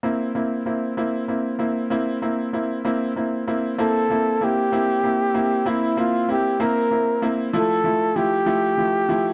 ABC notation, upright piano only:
X:1
M:6/8
L:1/8
Q:3/8=64
K:Cmix
V:1 name="Upright piano"
[B,CE] [B,CE] [B,CE] [B,CE] [B,CE] [B,CE] | [B,CE] [B,CE] [B,CE] [B,CE] [B,CE] [B,CE] | [B,CE] [B,CE] [B,CE] [B,CE] [B,CE] [B,CE] | [B,CE] [B,CE] [B,CE] [B,CE] [B,CE] [B,CE] |
[F,A,E] [F,A,E] [F,A,E] [F,A,E] [F,A,E] [F,A,E] |]